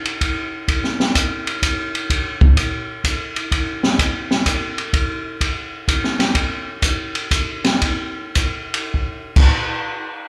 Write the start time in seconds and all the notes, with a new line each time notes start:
0.05 ride
0.21 kick, ride
0.68 kick, ride
0.84 snare
1.00 snare
1.15 kick, hi-hat pedal, ride
1.47 ride
1.62 kick, hi-hat pedal, ride
1.95 ride
2.10 kick, ride
2.41 kick
2.57 kick, hi-hat pedal, ride
3.04 kick, hi-hat pedal, ride
3.36 ride
3.51 kick, ride
3.83 snare
3.99 kick, hi-hat pedal, ride
4.31 snare
4.46 kick, hi-hat pedal, ride
4.78 ride
4.93 kick, ride
5.41 kick, ride
5.88 kick, hi-hat pedal, ride
6.04 snare
6.19 snare, ride
6.35 kick, ride
6.82 kick, hi-hat pedal, ride
7.15 ride
7.31 kick, hi-hat pedal, ride
7.64 snare, ride
7.82 kick, ride
8.35 kick, hi-hat pedal, ride
8.74 ride
8.94 kick
9.36 kick, crash